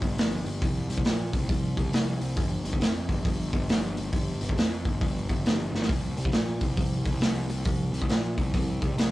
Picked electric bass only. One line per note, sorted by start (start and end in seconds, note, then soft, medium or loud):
0.02 0.17 G1 medium
0.18 0.44 G1 medium
0.45 0.61 G1 medium
0.62 0.88 C2 medium
0.89 1.04 C2 medium
1.05 1.32 A#2 medium
1.33 1.49 C2 medium
1.49 1.76 C2 medium
1.78 1.91 C2 medium
1.92 2.19 C2 medium
2.20 2.36 C2 medium
2.36 2.64 G1 medium
2.65 2.80 G1 medium
2.80 3.07 F2 medium
3.09 3.24 G1 medium
3.25 3.52 G1 medium
3.53 3.68 G1 medium
3.69 3.96 G1 medium
3.98 4.12 G1 medium
4.13 4.40 G1 medium
4.41 4.56 G1 medium
4.56 4.83 F2 medium
4.85 5.00 G1 medium
5.01 5.28 G1 medium
5.29 5.44 G1 medium
5.45 5.72 G1 medium
5.73 5.88 G1 medium
5.89 6.16 C2 medium
6.17 6.32 C2 medium
6.33 6.60 A#2 medium
6.61 6.77 C2 medium
6.77 7.04 C2 medium
7.06 7.20 C2 medium
7.21 7.48 C2 medium
7.50 7.65 C2 medium
7.66 7.92 C2 medium
7.93 8.08 C2 medium
8.09 8.36 A#2 medium
8.38 8.53 C2 medium
8.54 8.80 C2 medium
8.82 8.97 C2 medium
8.98 9.11 C2 medium